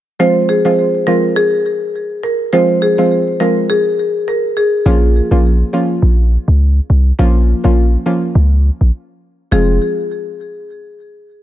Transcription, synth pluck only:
0.19 F3 G#3 C4 F4
0.65 F3 G#3 C4 F4
1.07 F3 G#3 C4 F4
2.53 F3 G#3 C4 F4
2.98 F3 G#3 C4 F4
3.40 F3 G#3 C4 F4
4.86 F3 A#3 C#4 F4
5.31 F3 A#3 C#4 F4
5.73 F3 A#3 C#4 F4
7.19 F3 A#3 C#4 F4
7.64 F3 A#3 C#4 F4
8.06 F3 A#3 C#4 F4
9.51 F3 G#3 C4 F4

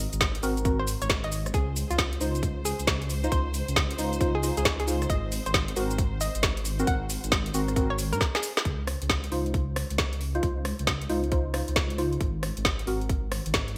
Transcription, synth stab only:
0.43 C4 F#4 A#4
0.65 C4 F#4 A#4
2.20 D#4 F4 C5
3.24 D#4 F4 C5
3.98 D#4 F4 C5
4.21 D#4 F4 C5
4.43 D#4 F4 C5
4.87 D#4 F4 C5
5.76 C4 F#4 A#4
6.79 C4 F#4 A#4
7.54 C4 F#4 A#4
7.76 C4 F#4 A#4
9.32 D#4 F4 C5
10.35 D#4 F4 C5
11.09 D#4 F4 C5
11.32 D#4 F4 C5
11.54 D#4 F4 C5
11.98 D#4 F4 C5
12.87 C4 F#4 A#4

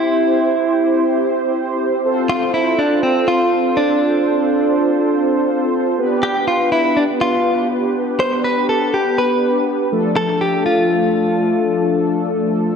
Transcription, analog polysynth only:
Already playing: C4 E4 G4 C5
2.05 C4 F4 A4 C5
5.98 B3 D4 G4 B4
9.92 F3 A3 D4 A4

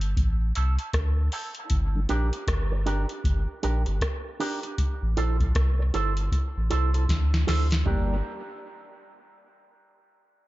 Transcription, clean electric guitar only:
0.55 C4 E4 A4
0.79 C4 E4 A4
1.32 C4 E4 A4
2.09 D4 G4 A#4
2.72 muted clean electric guitar stroke
2.86 D4 G4 A#4
3.63 D4 G4 A#4
3.86 muted clean electric guitar stroke
4.40 D4 G4 A#4
4.63 muted clean electric guitar stroke
5.17 E4 A4 C5
5.79 muted clean electric guitar stroke
5.94 E4 A4 C5
6.70 E4 A4 C5
6.94 E4 A4 C5
7.47 E4 A4 C5
7.86 D4 G4 A#4

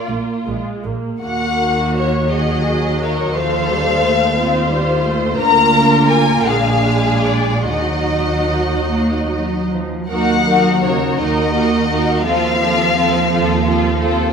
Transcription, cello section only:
0.08 A#2
0.47 A#2
0.84 A#2
1.22 D#3
3.37 D#3
5.38 D3
6.46 A#2
7.66 D#3
8.89 A#3
9.31 F#3
9.71 F3
10.10 F#3
10.85 C#3
11.21 D#3
12.27 F3

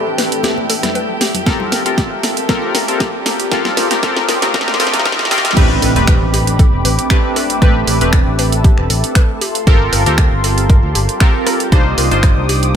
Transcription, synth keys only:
Already playing: A3 C4 D4 G4 B4
1.46 C4 F4 G4 A4 A#4
1.86 C4 F4 G4 A4 A#4
2.49 C4 F4 G4 A4 A#4
2.88 C4 F4 G4 A4 A#4
3.51 C4 F4 G4 A4 A#4
3.91 A3 C4 F4 G4 A#4
4.03 C4 F4 G4 A4 A#4
4.42 A3 C4 F4 G4 A#4
4.54 A3 C4 F4 G4 A#4
4.80 A3 C4 F4 G4 A#4
5.05 A3 C4 F4 G4 A#4
5.31 A3 C4 F4 G4 A#4
5.57 A3 C4 D4 G4 B4
5.96 A3 C4 D4 G4 B4
7.11 A3 C4 D4 G4 B4
7.62 A3 C4 D4 G4 B4
8.01 A3 C4 D4 G4 B4
9.67 C4 F4 G4 A4 A#4
10.06 C4 F4 G4 A4 A#4
11.21 C4 F4 G4 A4 A#4
11.72 A#3 D4 D#4 F4 C5
12.11 A#3 D4 D#4 F4 C5

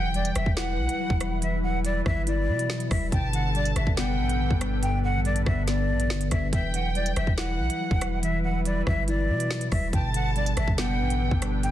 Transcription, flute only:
0.15 D5
0.36 E5
0.57 F#5
1.42 E5
1.63 F#5
1.85 D5
2.06 E5
2.27 D5
2.91 E5
3.12 G5
3.34 F#5
3.55 D5
3.76 E5
3.97 F#5
4.83 G5
5.04 F#5
5.25 D5
5.46 E5
5.68 D5
6.31 E5
6.53 E5
6.74 F#5
6.95 D5
7.17 E5
7.38 F#5
8.23 E5
8.44 F#5
8.65 D5
8.87 E5
9.08 D5
9.72 E5
9.93 G5
10.15 F#5
10.36 D5
10.57 E5
10.78 F#5
11.63 G5

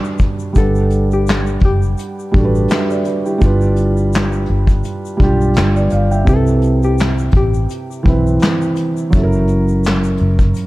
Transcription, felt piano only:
Already playing: G3 D4 F#4 B4
0.53 G3 D4
0.57 B4 F#5
2.32 G3 D4
2.36 F#4 A4
2.45 B4
2.71 E5
2.90 B4 D5
3.06 G4 B4
3.26 E4 G4
3.38 G3 D4
3.43 F4 B4
5.17 G3 D4
5.21 F4 G4
5.76 B4 D5
5.92 D5 F5
6.11 E5 G5
6.24 C3 C4
6.28 E4 B4
8.03 E3 C4
8.07 E4 B4
9.10 F#3 C#4
9.15 E4 A4
9.23 A#4

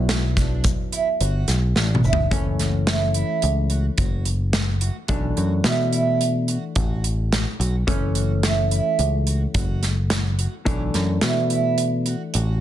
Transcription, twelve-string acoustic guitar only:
0.09 C#4
0.37 D4
0.93 E4
1.21 F#4
1.76 D4
2.05 E4
2.32 C#4
2.60 F#4
2.87 E4
3.15 E4
3.70 F#4
3.98 F#4
4.54 F#4
4.82 F#4
5.10 C#4
5.38 F#4
5.65 E4
5.93 E4
6.49 F#4
6.77 F#4
7.33 F#4
7.61 F#4
7.89 C#4
8.17 F#4
8.44 E4
8.72 E4
9.27 F#4
9.56 F#4
10.11 F#4
10.40 F#4
10.68 C#4
10.96 F#4
11.23 E4
11.51 E4
12.07 F#4
12.35 F#4

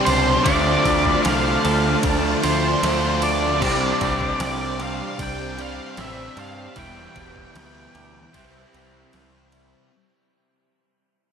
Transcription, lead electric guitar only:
0.05 C5
0.43 D5
1.23 F5
2.44 C5
3.23 D5
4.42 D5
4.83 F5
5.22 G5
5.61 F5
6.00 E5
6.39 F5
6.79 G5

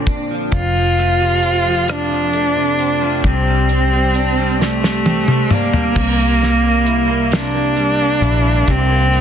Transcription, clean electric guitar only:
Already playing: A#2 D3 F3 C4
0.07 D4
0.31 F3
0.54 F2
0.77 F3
0.99 A3
1.21 C3
1.43 C4
1.66 F3
1.88 F2
2.11 F3
2.34 A3
2.56 C3
2.79 C4
3.02 F3
3.25 C3
3.47 G3
3.69 C4
3.92 G3
4.15 D4
4.38 G3
4.60 C3
4.83 G3
5.06 C4
5.28 G3
5.51 D4
5.74 G3
5.96 C3
6.19 A#3
6.41 G3
6.63 A#3
6.85 E4
7.08 A#3
7.31 C3
7.54 A#3
7.77 G3
7.99 A#3
8.22 E4
8.44 A#3
8.68 C3
8.90 A#3
9.13 G3

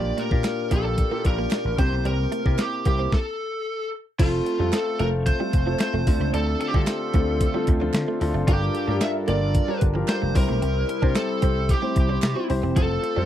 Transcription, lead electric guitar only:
Already playing: D5
0.19 A#4
0.73 A4
1.27 A#4
1.79 C5
2.07 A#4
2.60 G4
2.87 G4
3.13 A4
4.20 F4
4.74 A4
5.00 A#4
5.27 C5
5.80 C5
6.34 A4
6.61 A4
6.68 G4
6.75 A4
8.48 G4
9.02 E5
9.29 D5
10.09 C5
10.36 A#4
11.16 A4
11.70 G4
12.77 A4

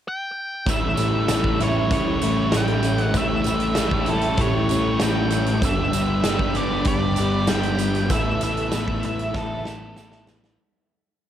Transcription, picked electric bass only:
0.66 A1
0.97 A1
1.29 A1
1.60 A1
1.91 A1
2.22 A1
2.54 A1
3.14 A1
3.46 A1
3.77 A1
4.08 A1
4.38 A1
4.70 A1
5.00 A1
5.61 G1
5.93 G1
6.24 G1
6.55 G1
6.86 G1
7.18 G1
7.49 G1
8.10 A1
8.42 A1
8.73 A1
9.05 A1
9.34 A1
9.67 A1
9.98 A1

